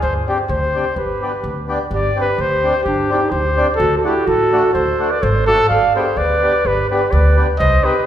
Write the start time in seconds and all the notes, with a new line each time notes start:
0.02 G1 C5
0.27 C4 D4 G4
0.49 D2 C5
0.75 C4 D4 G4
0.96 G1 G4 B4
1.22 B3 D4 G4
1.44 D2
1.68 B3 D4 G4
1.91 G1 G4 D5
2.16 C4 D4 G4
2.21 G4 B4
2.38 D2 G4 C5
2.63 C4 D4 G4
2.84 G1 D4 G4
3.10 C4 D4 D#4 G4
3.31 D2 G4 C5
3.57 C4 D4 G4
3.76 D2 F#4 A4
3.97 F#4 A4
4.03 A3 D4 E4 F#4 G4
4.26 A1 F#4 A4
4.52 A3 D4 F#4
4.72 D2 A4 C5
4.99 A3 D4 F#4
5.10 B4 D5
5.20 G#1 A4 C5
5.47 A3 D4 F#4 A4
5.69 G1 D5 F5
5.95 B3 D4 G4 G#4 C5
6.16 D2 B4 D5
6.42 B3 D4 G4
6.65 G1 G4 B4
6.90 B3 D4 G4 B4
7.11 D2 B4 D5
7.36 B3 D4 G4
7.59 C2 C5 D#5
7.83 C4 D#4 G4 B4